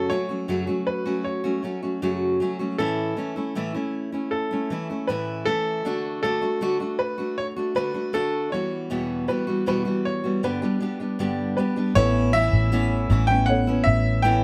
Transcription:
Already playing: F#2 C#3 C#4 F#4 A4
0.10 F#3 A3 C#4 F#4 C#5
0.29 F#3 A3 C#4 F#4
0.48 F#2 C#3 F#3 A3 C#4 F#4
0.67 F#3 A3 C#4 F#4
0.87 B4
1.05 F#3 A3 C#4 F#4
1.24 C#5
1.44 F#3 A3 C#4 F#4
1.63 F#3 A3 C#4 F#4
1.82 F#3 A3 C#4 F#4
2.02 F#2 C#3 F#3 A3 C#4 F#4
2.40 F#3 A3 C#4 F#4
2.59 F#3 A3 C#4 F#4
2.78 A2 E3 A3 C#4 E4 A4
3.17 E3 A3 C#4 E4
3.36 A3 C#4 E4
3.55 A2 E3 A3 C#4 E4
3.74 A3 C#4 E4
4.12 A3 C#4 E4
4.31 A4
4.51 A3 C#4 E4
4.70 E3 A3 C#4 E4
4.90 A3 C#4 E4
5.07 A2 E3 A3 C#4 E4 B4
5.45 E3 A3 C#4 E4 A4
5.85 D3 A3 D4 F#4
6.23 D3 A3 D4 F#4 A4
6.41 A3 D4 F#4
6.61 D3 A3 D4 F#4
6.80 A3 D4 F#4
6.99 B4
7.18 A3 D4 F#4
7.38 C#5
7.56 A3 D4 F#4
7.75 D3 A3 D4 F#4 B4
7.94 A3 D4 F#4
8.13 D3 A3 D4 F#4 A4
8.52 E3 G3 B3 F#4 C#5
8.90 E2 B2 E3 G3 B3 F#4
9.28 E3 G3 B3 F#4 B4
9.47 E3 G3 B3 F#4
9.66 E2 B2 E3 G3 B3 F#4 B4
9.85 E3 G3 B3 F#4
10.05 C#5
10.24 E3 G3 B3 F#4
10.43 G2 D3 G3 B3 D4 G4 B4
10.62 G3 B3 D4 G4
10.80 G3 B3 D4 G4
11.00 G3 B3 D4 G4
11.19 G2 D3 G3 B3 D4 G4
11.57 G3 B3 D4 G4 B4
11.76 G3 B3 D4 G4
11.95 A1 A2 E3 B3 C#4 E4 A4 C#5
12.33 E3 B3 C#4 E4 E5
12.53 A1
12.72 A2 E3 B3 C#4 E4
13.10 A1 E3 B3 C#4 E4
13.27 C#4 E4 G5
13.31 B3
13.46 B3 A4 C#5 F#5
13.67 B3 C#4 E4
13.84 A1 E5
14.22 A2 E3 B3 C#4 E4 G5

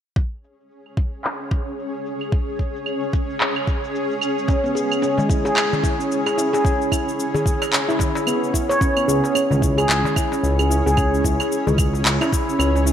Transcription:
0.16 C#4 G#4 C#5, kick
0.44 cabasa
0.60 cabasa
0.71 cabasa
0.86 cabasa, claves
0.97 kick
1.14 cabasa
1.24 clap, cabasa
1.41 cabasa
1.51 kick, cabasa, claves
1.68 cabasa
1.79 cabasa
1.95 cabasa
2.06 cabasa
2.21 cabasa, claves
2.32 kick, cabasa
2.49 cabasa
2.59 kick, cabasa
2.76 cabasa
2.86 cabasa, claves
3.03 cabasa
3.13 kick, cabasa
3.30 cabasa
3.41 clap, cabasa
3.56 cabasa, claves
3.67 kick, cabasa
3.84 cabasa
3.95 cabasa
4.11 cabasa
4.21 cabasa, claves
4.39 cabasa
4.48 C#4, kick, darbuka ka, cabasa
4.64 B3, cabasa
4.75 G#4, cabasa
4.92 cabasa, claves
5.02 C#4, cabasa
5.18 G#3, darbuka dum, cabasa
5.29 E4, kick, cabasa
5.45 G#4, darbuka tek, cabasa
5.56 clap, cabasa, claves
5.73 darbuka ka, darbuka tek, darbuka dum, cabasa
5.83 E4, kick, cabasa
5.99 C#4, cabasa
6.12 cabasa
6.26 G#4, darbuka tek, cabasa, claves
6.38 E4, darbuka ka, cabasa
6.53 G#4, darbuka tek, cabasa
6.65 C#4, kick, darbuka ka, cabasa
6.82 cabasa
6.92 E4, kick, darbuka ka, cabasa, claves
7.09 cabasa
7.20 cabasa
7.34 G#4, darbuka dum, cabasa
7.46 kick, cabasa
7.62 darbuka tek, cabasa, claves
7.73 clap, cabasa
7.88 E4, darbuka ka, cabasa
7.99 kick, darbuka tek, darbuka dum, cabasa
8.15 darbuka tek, cabasa
8.27 B3, cabasa, claves
8.44 cabasa
8.54 E4, kick, cabasa
8.69 C#5, darbuka tek, cabasa
8.81 C#4 G#4 C#5, kick, cabasa
8.97 B3, cabasa, claves
9.08 C#2 G#4, cabasa
9.24 darbuka ka, cabasa
9.35 C#4, cabasa, claves
9.51 C#2 G#3, darbuka dum, cabasa
9.62 E4, kick, cabasa
9.78 G#4, darbuka ka, cabasa, claves
9.89 C#2, clap, cabasa
10.04 darbuka tek, darbuka dum, cabasa
10.16 E4, kick, cabasa, claves
10.32 C#4, darbuka tek, cabasa
10.43 C#2, cabasa
10.59 G#4, cabasa, claves
10.70 E4, cabasa
10.86 C#2 G#4, cabasa
10.97 C#4, kick, cabasa, claves
11.14 cabasa
11.24 C#2 E4, kick, cabasa
11.40 darbuka ka, cabasa, claves
11.52 cabasa
11.67 C#2 G#4, darbuka dum, cabasa
11.78 kick, cabasa, claves
11.93 darbuka ka, cabasa
12.05 C#2, clap, cabasa
12.21 E4, darbuka tek, cabasa, claves
12.32 kick, darbuka ka, cabasa
12.49 cabasa
12.59 C#2 C#4, darbuka tek, cabasa, claves
12.76 darbuka ka, cabasa
12.86 E4, cabasa

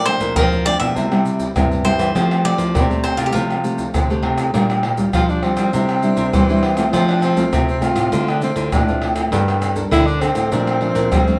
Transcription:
Already playing: A#2
0.06 F3 A3 D4 C5, pandeiro, tamborim
0.20 A#2, pandeiro, maracas, surdo
0.36 F2 F3 A#4, pandeiro, tamborim, maracas, surdo
0.52 pandeiro, maracas
0.65 F3 A3 D4 D5, pandeiro, tamborim, maracas, surdo
0.80 B2 E5, pandeiro, tamborim, maracas
0.96 C3 G3 C4 E4, pandeiro, maracas, surdo
1.11 G3 C4 E4, pandeiro, tamborim, maracas
1.25 pandeiro, maracas
1.40 pandeiro, maracas, surdo
1.56 G2 C3 G3 C4 E4, pandeiro, tamborim, maracas, surdo
1.71 pandeiro, maracas
1.85 G3 C4 E4 C5, pandeiro, tamborim, maracas, surdo
1.99 E3, pandeiro, tamborim, maracas, surdo
2.15 F3 A3 C4 G4, pandeiro, tamborim, maracas, surdo
2.31 pandeiro, tamborim, maracas
2.44 A3 C4 G4 D5, pandeiro, tamborim
2.58 F3, pandeiro, maracas, surdo
2.75 C3, pandeiro, tamborim, maracas, surdo
2.90 A3 C4 G4, pandeiro, maracas
3.04 C5, pandeiro, tamborim, maracas, surdo
3.17 C3 F4, pandeiro, tamborim, maracas
3.26 G4
3.33 C3 F3 A3 C4 F4 G4, pandeiro, maracas, surdo
3.50 pandeiro, tamborim, maracas
3.64 A3 C4 G4, pandeiro, maracas
3.78 pandeiro, maracas, surdo
3.94 C3 D3, pandeiro, tamborim, maracas, surdo
4.10 A3 C4 G4, pandeiro, maracas
4.23 C3, pandeiro, tamborim, surdo
4.38 pandeiro, tamborim, maracas, surdo
4.54 A#2 G3 D4 F4, pandeiro, tamborim, maracas, surdo
4.70 pandeiro, tamborim, maracas
4.83 pandeiro, tamborim
4.97 G3 D4 F4, pandeiro, maracas, surdo
5.13 F3 F4, pandeiro, tamborim, maracas, surdo
5.29 D4, pandeiro, maracas
5.43 G3 C4 D4 F4, pandeiro, tamborim, surdo
5.57 G3, pandeiro, tamborim, maracas
5.73 C3 G3 D4 E4, pandeiro, maracas, surdo
5.89 pandeiro, tamborim, maracas
6.02 G3 D4 E4, pandeiro, maracas
6.17 C3, pandeiro, maracas, surdo
6.33 E3 G3, pandeiro, tamborim, maracas, surdo
6.49 G3 D4 E4, pandeiro, maracas
6.63 pandeiro, tamborim, surdo
6.77 A3 C4 F4, pandeiro, tamborim, maracas, surdo
6.93 F3 C4, pandeiro, tamborim, maracas, surdo
7.09 D4, pandeiro, tamborim, maracas
7.22 C4, pandeiro, tamborim, maracas
7.36 A3 C4 F4, pandeiro, maracas, surdo
7.52 C3, pandeiro, tamborim, maracas, surdo
7.68 C4, pandeiro, maracas
7.81 A3 C4 F4, pandeiro, tamborim, maracas, surdo
7.96 A2, pandeiro, tamborim, maracas
8.12 D3 A3 C4 F4, pandeiro, maracas, surdo
8.28 D4, pandeiro, tamborim, maracas
8.42 A3 C4 F4, pandeiro, maracas
8.56 D3, pandeiro, maracas, surdo
8.72 A2 D4, pandeiro, tamborim, maracas, surdo
8.88 A3 C4 F4, pandeiro, maracas
9.02 pandeiro, tamborim, surdo
9.16 pandeiro, tamborim, maracas, surdo
9.32 G2 G3 A#3 D4 A4, pandeiro, tamborim, maracas, surdo
9.48 pandeiro, tamborim, maracas
9.62 pandeiro, tamborim, maracas
9.75 A#3 D4 A4, pandeiro, maracas, surdo
9.91 D3 E4, pandeiro, tamborim, maracas, surdo
10.07 D4, pandeiro, maracas
10.21 A#3 C4 D4 A4, pandeiro, tamborim, maracas, surdo
10.35 A2, pandeiro, tamborim, maracas
10.52 A#2 F3 A3 D4, pandeiro, maracas, surdo
10.67 pandeiro, tamborim, maracas
10.81 F3 A3 D4, pandeiro
10.95 A#2, pandeiro, maracas, surdo
11.12 F2 G3, pandeiro, tamborim, maracas, surdo
11.27 F3 A3 D4, pandeiro, maracas

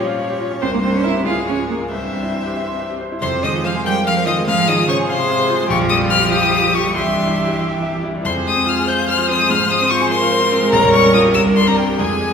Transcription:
Already playing: A#2 F3 G3 C#4 F4 G4
0.00 F3 C#5
0.09 F5
0.20 C#5
0.30 G4
0.40 F4
0.51 C#4
0.61 C2 A#3 C4 C5
0.72 G2 A#3 A#4
0.82 G3 C4 C5
0.93 C4 C#4 C#5
1.04 E4 A#4 E5
1.14 G4
1.25 C#2 G#3 F4 G#4 F5
1.36 G#2
1.46 F3 C#4 C#5
1.58 F4
1.68 A#3 G#4 A#4
1.81 F4
1.91 C2 E3 C4 C5 E5
2.02 G2
2.13 G3
2.23 E4
2.35 C5
2.46 G4
2.56 E5
2.68 C6
2.79 E5
2.90 G4
3.01 C5
3.12 E4
3.21 F2 C3 C5 C6
3.33 C3
3.43 D#3 G#3 D#5 D#6
3.54 F4
3.64 F3 C5 F5 F6
3.75 G#4
3.85 G3 A#4 F5 G5 G6
3.96 C6
4.06 F3 F5 F6
4.17 C5
4.26 D#3 F4 D#5 D#6
4.38 G#3
4.47 G#2 F3 G#4 F5 F6
4.58 F3
4.67 D#3 G#3 D#5 D#6
4.78 F4
4.86 C#3 C5 C#5 C#6
4.99 G#4
5.07 C3 C5 F5 C6
5.19 C6
5.30 F5
5.40 C5
5.50 F4
5.60 G#3
5.69 A#1 F3 F4 G4 C#6
5.80 F2
5.89 G3 D#6
6.01 F4
6.10 G4 F6
6.20 F4
6.31 G4 F5 D#6
6.42 G5
6.52 F5
6.63 G4
6.74 F4 C#6
6.84 G3
6.94 C2 E3 G4 E5 C6
7.06 G2
7.16 G3
7.27 E4
7.38 G4
7.49 E4
7.59 E5
7.71 G5
7.82 E5
7.93 G4
8.04 E4
8.15 G3
8.24 F2 F3 G#4 C5 C6
8.35 C3
8.46 G#3 D#6
8.56 C4
8.66 F4 F6
8.76 G#4
8.87 C5 G6
8.98 F5
9.08 C5 F6
9.18 F4
9.29 C4 D#6
9.39 G#3
9.50 G#2 C5 F6
9.60 F3
9.71 G#3 D#6
9.81 C4
9.90 F4 C#6
10.01 G#4
10.10 A#4 C5 C6
10.22 F5
10.32 C5
10.41 F4
10.52 C4
10.62 G#3
10.72 A#1 G3 C#5 A#5
10.83 F2
10.93 G3 C#6
11.03 C#4
11.14 F4 D#6
11.25 G4
11.34 C2 G3 A#4 E6
11.46 G2
11.56 G3 C6
11.66 C4 A#5
11.77 A#4 G5
11.88 G4
11.98 F2 G#3 G#4 G#5
12.10 C3
12.21 G#3

